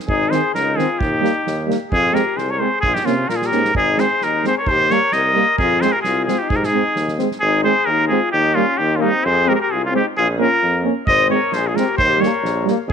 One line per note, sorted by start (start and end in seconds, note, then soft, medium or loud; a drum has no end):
0.07 0.32 G#1 medium
0.07 0.36 D#4 loud
0.07 0.32 G#4 medium
0.07 kick medium
0.31 0.40 D#3 medium
0.31 0.41 C4 medium
0.31 0.55 G#4 loud
0.31 0.54 C5 medium
0.31 snare soft
0.54 0.79 C#2 medium
0.54 0.80 D#4 medium
0.54 0.78 A#4 medium
0.54 snare soft
0.76 0.85 D#3 medium
0.76 0.87 C4 medium
0.76 1.03 F4 medium
0.76 1.00 G#4 medium
0.76 snare soft
0.99 1.26 D#2 medium
0.99 1.69 D#4 medium
0.99 1.68 G4 medium
0.99 kick medium
1.21 1.30 G3 medium
1.21 1.32 A#3 medium
1.21 snare soft
1.47 1.72 D#2 medium
1.47 snare soft
1.67 1.76 G3 medium
1.67 1.77 A#3 medium
1.67 snare soft
1.90 2.17 F2 loud
1.90 2.14 F4 medium
1.90 2.16 G#4 loud
1.90 kick medium
2.13 2.23 G#3 medium
2.13 2.22 C4 medium
2.13 2.38 G4 medium
2.13 2.39 A#4 medium
2.13 snare soft
2.36 2.62 C2 medium
2.36 2.52 G#4 medium
2.36 2.52 C5 medium
2.36 snare soft
2.50 2.65 A#4 medium
2.50 2.61 C#5 medium
2.59 2.69 G#3 medium
2.59 2.69 C4 medium
2.59 2.80 C5 medium
2.63 2.84 G#4 medium
2.80 2.95 A#1 medium
2.80 2.96 G#4 loud
2.80 kick medium
2.85 2.96 F4 medium
2.94 3.04 D#4 medium
2.94 3.07 G4 medium
2.94 snare soft
3.02 3.27 C3 medium
3.02 3.14 A#3 medium
3.02 3.31 C#4 medium
3.02 3.15 C#4 medium
3.02 3.30 F4 medium
3.02 snare soft
3.29 3.50 A#2 medium
3.29 3.33 F4 medium
3.29 3.37 A#4 medium
3.29 snare soft
3.33 3.44 F4 medium
3.33 3.48 G#4 medium
3.42 3.74 G4 medium
3.42 snare soft
3.46 3.76 A#4 medium
3.51 3.73 G#2 medium
3.51 3.62 A#3 soft
3.51 3.61 C#4 soft
3.51 snare soft
3.65 snare soft
3.75 4.00 G#1 medium
3.75 4.02 D#4 medium
3.75 4.01 G#4 loud
3.75 kick medium
3.97 4.07 G#3 medium
3.97 4.07 C4 medium
3.97 4.26 G#4 medium
3.97 4.25 C5 medium
3.97 snare soft
4.21 4.47 D#2 medium
4.21 4.46 D#4 medium
4.21 4.45 A#4 medium
4.21 snare soft
4.44 4.53 G#3 medium
4.44 4.54 C4 medium
4.44 4.57 C5 medium
4.44 snare soft
4.48 4.58 G#4 medium
4.58 4.72 A#4 medium
4.58 4.69 C#5 medium
4.66 4.91 D#2 medium
4.66 4.93 C5 loud
4.66 kick medium
4.70 4.95 G4 medium
4.90 4.99 G3 medium
4.90 4.99 A#3 medium
4.90 5.15 A#4 medium
4.90 5.14 C#5 medium
4.90 snare soft
5.12 5.38 C2 medium
5.12 5.59 A#4 medium
5.12 5.58 D#5 loud
5.12 snare soft
5.35 5.44 G3 medium
5.35 5.45 A#3 medium
5.58 5.84 F2 medium
5.58 5.82 G#4 loud
5.58 kick medium
5.62 5.85 F4 loud
5.81 5.92 G#3 medium
5.81 5.91 C4 medium
5.81 5.98 G#4 medium
5.81 5.94 C5 medium
5.81 snare soft
5.92 6.01 A#4 medium
5.96 6.05 G4 medium
6.02 6.29 C2 medium
6.02 6.24 G#4 medium
6.02 snare soft
6.06 6.27 F4 medium
6.26 6.37 G#3 medium
6.26 6.36 C4 medium
6.26 6.44 F4 medium
6.26 6.40 G#4 medium
6.26 snare soft
6.39 6.51 D#4 medium
6.39 6.51 G4 medium
6.49 6.76 G#2 medium
6.49 6.57 D#4 medium
6.49 6.57 G#4 medium
6.49 kick loud
6.56 6.70 G4 medium
6.56 6.67 A#4 medium
6.63 7.19 G#4 medium
6.63 snare soft
6.68 7.20 D#4 medium
6.73 6.83 G#3 medium
6.73 6.82 C4 medium
6.95 7.21 D#2 medium
6.95 snare soft
7.08 snare soft
7.19 7.29 G#3 medium
7.19 7.28 C4 medium
7.19 snare soft
7.31 snare soft
7.40 7.67 G#1 loud
7.40 7.62 G#4 loud
7.44 7.64 D#4 medium
7.64 7.74 G#3 medium
7.64 7.73 C4 medium
7.64 7.92 G#4 medium
7.64 7.87 C5 loud
7.86 8.12 D#2 medium
7.86 8.07 A#4 medium
7.91 8.10 D#4 medium
8.08 8.20 G#3 medium
8.08 8.20 C4 medium
8.08 8.32 F4 medium
8.08 8.30 G#4 medium
8.32 8.58 D#2 medium
8.32 8.58 D#4 medium
8.32 8.56 G4 loud
8.55 8.65 G3 medium
8.55 8.65 A#3 medium
8.55 8.81 C#4 medium
8.55 8.79 F4 loud
8.78 9.04 D#2 medium
8.78 8.99 D#4 medium
8.78 8.97 G4 medium
8.96 9.07 C#4 medium
8.96 9.02 F4 medium
9.00 9.12 G3 medium
9.00 9.09 A#3 medium
9.00 9.26 D#4 loud
9.06 9.28 C4 medium
9.25 9.50 F2 loud
9.25 9.52 G#4 loud
9.25 9.50 C5 loud
9.46 9.57 G#3 medium
9.46 9.55 C4 medium
9.46 9.54 A#4 loud
9.50 9.55 G4 loud
9.55 9.61 G4 medium
9.55 9.60 A#4 medium
9.60 9.75 G4 medium
9.60 9.73 A#4 medium
9.70 9.95 C2 medium
9.70 9.84 F4 medium
9.70 9.83 G#4 medium
9.85 9.94 C#4 medium
9.85 9.94 F4 medium
9.93 10.03 G#3 medium
9.93 10.02 C4 medium
9.93 10.05 G4 medium
9.99 10.08 D#4 medium
10.17 10.42 A#1 loud
10.17 10.28 F4 medium
10.17 10.27 G#4 loud
10.38 10.47 A#3 medium
10.38 10.49 C#4 medium
10.38 10.83 F4 medium
10.38 10.82 A#4 loud
10.62 10.87 F2 medium
10.84 10.93 A#3 soft
10.84 10.93 C#4 medium
11.07 11.32 G#1 loud
11.07 11.29 C5 loud
11.07 11.28 D#5 loud
11.07 kick loud
11.29 11.39 G#3 medium
11.29 11.39 C4 medium
11.29 11.55 C#5 medium
11.34 11.59 A#4 medium
11.52 11.77 A#1 medium
11.52 11.69 C5 medium
11.52 snare soft
11.57 11.70 G#4 loud
11.67 11.82 F4 medium
11.67 11.77 G#4 medium
11.75 11.84 G#3 medium
11.75 11.86 C4 medium
11.75 11.97 A#4 medium
11.75 snare soft
11.81 12.01 G4 medium
11.97 12.23 D#2 medium
11.97 12.22 C5 loud
11.97 kick medium
12.05 12.28 G4 medium
12.19 12.28 G3 medium
12.19 12.67 C#5 medium
12.19 snare soft
12.24 12.33 A#3 medium
12.24 12.70 A#4 medium
12.42 12.68 A#1 loud
12.42 snare soft
12.65 12.74 G3 medium
12.65 snare soft
12.70 12.78 A#3 medium
12.87 12.93 F2 medium
12.87 12.93 G#4 loud